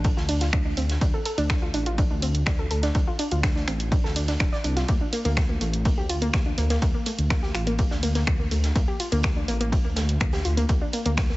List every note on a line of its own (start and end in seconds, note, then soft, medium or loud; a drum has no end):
0.00 0.13 A1 medium
0.04 0.16 D4 medium
0.04 kick loud
0.04 closed hi-hat loud
0.04 closed hi-hat medium
0.17 0.49 D2 medium
0.17 0.21 F4 medium
0.17 snare medium
0.29 0.37 D4 loud
0.29 open hi-hat loud
0.29 open hi-hat medium
0.41 0.49 F4 medium
0.41 snare soft
0.41 closed hi-hat medium
0.53 0.72 D2 medium
0.53 0.64 D4 medium
0.53 finger snap loud
0.53 kick loud
0.53 closed hi-hat medium
0.65 0.77 D4 medium
0.77 0.97 D2 loud
0.77 0.82 C4 medium
0.77 closed hi-hat medium
0.77 open hi-hat loud
0.90 snare medium
0.90 closed hi-hat medium
1.01 1.11 D2 loud
1.01 1.13 D4 medium
1.01 kick loud
1.01 closed hi-hat medium
1.14 1.21 A4 medium
1.25 1.33 A4 medium
1.25 closed hi-hat medium
1.25 open hi-hat loud
1.38 1.70 D2 loud
1.38 1.45 D4 loud
1.38 closed hi-hat medium
1.38 closed hi-hat soft
1.50 finger snap loud
1.50 kick loud
1.50 snare loud
1.50 closed hi-hat medium
1.62 1.67 F4 medium
1.74 2.07 A1 medium
1.74 1.82 D4 loud
1.74 closed hi-hat medium
1.74 open hi-hat loud
1.86 1.94 F4 medium
1.86 closed hi-hat medium
1.98 2.09 D4 medium
1.98 kick loud
1.98 closed hi-hat medium
2.10 2.43 D2 medium
2.10 2.22 D4 medium
2.22 2.27 C4 medium
2.22 closed hi-hat medium
2.22 open hi-hat loud
2.35 closed hi-hat medium
2.46 2.66 D2 loud
2.46 2.58 D4 medium
2.46 finger snap loud
2.46 kick loud
2.46 snare loud
2.46 closed hi-hat medium
2.59 2.66 A4 medium
2.71 2.90 D2 medium
2.71 2.79 A4 medium
2.71 closed hi-hat medium
2.71 open hi-hat loud
2.83 2.91 D4 loud
2.83 snare medium
2.83 closed hi-hat medium
2.95 3.05 D2 loud
2.95 3.07 D4 medium
2.95 kick loud
2.95 closed hi-hat medium
3.07 3.12 F4 medium
3.19 3.27 D4 loud
3.19 closed hi-hat medium
3.19 open hi-hat loud
3.31 3.64 D2 loud
3.31 3.39 F4 medium
3.31 closed hi-hat soft
3.43 3.55 D4 medium
3.43 finger snap loud
3.43 kick loud
3.43 snare loud
3.43 closed hi-hat medium
3.56 3.67 D4 medium
3.56 snare soft
3.67 4.00 A1 medium
3.67 3.72 C4 medium
3.67 finger snap medium
3.67 closed hi-hat medium
3.67 open hi-hat loud
3.80 closed hi-hat soft
3.80 closed hi-hat medium
3.92 4.03 D4 medium
3.92 kick loud
3.92 closed hi-hat medium
4.04 4.36 D2 medium
4.04 4.12 A4 medium
4.04 snare medium
4.16 4.24 D4 medium
4.16 open hi-hat loud
4.16 open hi-hat medium
4.28 4.33 D4 medium
4.28 snare soft
4.28 closed hi-hat medium
4.40 4.50 D1 loud
4.40 4.48 D4 medium
4.40 finger snap loud
4.40 kick loud
4.40 snare loud
4.40 closed hi-hat medium
4.52 4.57 D5 medium
4.52 snare soft
4.64 4.84 C2 loud
4.64 4.76 D4 medium
4.64 closed hi-hat medium
4.64 open hi-hat loud
4.77 4.88 F4 medium
4.77 snare medium
4.77 closed hi-hat medium
4.88 4.98 D2 medium
4.88 5.00 A#3 medium
4.88 kick loud
4.88 closed hi-hat medium
5.01 5.05 D4 medium
5.13 5.20 A#3 loud
5.13 closed hi-hat medium
5.13 open hi-hat loud
5.25 5.57 D2 loud
5.25 5.33 A#3 loud
5.25 closed hi-hat medium
5.25 closed hi-hat soft
5.37 5.48 A#3 medium
5.37 finger snap loud
5.37 kick loud
5.37 snare loud
5.37 closed hi-hat medium
5.49 5.60 A#3 medium
5.61 5.94 A1 medium
5.61 5.66 A3 medium
5.61 closed hi-hat medium
5.61 open hi-hat loud
5.73 closed hi-hat medium
5.85 5.97 A#3 medium
5.85 kick loud
5.85 closed hi-hat medium
5.98 6.30 D2 medium
5.98 6.05 G4 medium
6.09 6.17 F4 medium
6.09 closed hi-hat medium
6.09 open hi-hat loud
6.22 6.29 A#3 loud
6.22 closed hi-hat medium
6.33 6.53 D2 medium
6.33 6.45 A#3 medium
6.33 finger snap loud
6.33 kick loud
6.33 snare loud
6.33 closed hi-hat medium
6.46 6.50 D4 medium
6.58 6.77 D2 medium
6.58 6.66 A#3 loud
6.58 closed hi-hat medium
6.58 open hi-hat loud
6.70 6.78 A#3 loud
6.70 snare medium
6.70 closed hi-hat medium
6.82 6.92 D2 loud
6.82 6.93 A#3 medium
6.82 kick loud
6.82 closed hi-hat medium
6.94 7.06 A#3 medium
7.06 7.11 A3 medium
7.06 closed hi-hat medium
7.06 open hi-hat loud
7.19 7.51 D2 loud
7.19 closed hi-hat medium
7.30 7.42 A#3 medium
7.30 finger snap loud
7.30 kick loud
7.30 snare loud
7.30 closed hi-hat loud
7.30 closed hi-hat medium
7.43 7.50 G4 medium
7.43 snare soft
7.55 7.87 A1 medium
7.55 7.62 F4 medium
7.55 finger snap medium
7.55 closed hi-hat medium
7.55 open hi-hat loud
7.67 7.74 A#3 loud
7.67 closed hi-hat soft
7.67 closed hi-hat medium
7.78 7.90 A#3 medium
7.78 kick loud
7.78 closed hi-hat medium
7.91 8.23 D2 medium
7.91 7.96 D4 medium
7.91 snare medium
8.03 8.11 A#3 loud
8.03 open hi-hat medium
8.03 open hi-hat loud
8.15 8.23 A#3 loud
8.15 snare soft
8.15 closed hi-hat medium
8.27 8.47 D2 medium
8.27 8.38 A#3 medium
8.27 finger snap loud
8.27 kick loud
8.27 closed hi-hat medium
8.40 8.51 A#3 medium
8.51 8.71 D2 loud
8.51 8.56 A3 medium
8.51 closed hi-hat medium
8.51 open hi-hat loud
8.64 snare medium
8.64 closed hi-hat medium
8.75 8.85 D2 loud
8.75 8.87 A#3 medium
8.75 kick loud
8.75 closed hi-hat medium
8.88 8.95 G4 medium
9.00 9.08 F4 medium
9.00 closed hi-hat medium
9.00 open hi-hat loud
9.12 9.44 D2 loud
9.12 9.20 A#3 loud
9.12 closed hi-hat soft
9.12 closed hi-hat medium
9.23 9.36 A#3 medium
9.23 finger snap loud
9.23 kick loud
9.23 snare loud
9.23 closed hi-hat medium
9.36 9.41 D4 medium
9.48 9.81 A1 medium
9.48 9.56 A#3 loud
9.48 closed hi-hat medium
9.48 open hi-hat loud
9.61 9.68 A#3 loud
9.61 closed hi-hat medium
9.72 kick loud
9.72 closed hi-hat medium
9.85 10.17 D2 medium
9.85 9.96 A#3 medium
9.96 10.01 A3 medium
9.96 snare loud
9.96 closed hi-hat medium
9.96 open hi-hat loud
10.09 closed hi-hat medium
10.21 10.40 D2 medium
10.21 10.32 A#3 medium
10.21 finger snap loud
10.21 kick loud
10.21 closed hi-hat medium
10.32 10.41 G4 medium
10.32 snare loud
10.32 closed hi-hat medium
10.45 10.64 D2 medium
10.45 10.53 F4 medium
10.45 open hi-hat loud
10.57 10.65 A#3 loud
10.57 closed hi-hat medium
10.69 10.79 D2 medium
10.69 10.81 A#3 medium
10.69 kick loud
10.69 closed hi-hat medium
10.82 10.86 D4 medium
10.93 11.01 A#3 loud
10.93 closed hi-hat medium
10.93 open hi-hat loud
11.06 11.37 D2 loud
11.06 11.13 A#3 loud
11.06 closed hi-hat medium
11.17 11.29 A#3 medium
11.17 finger snap loud
11.17 kick loud
11.17 snare loud
11.17 closed hi-hat medium
11.29 11.37 A#3 medium
11.29 snare soft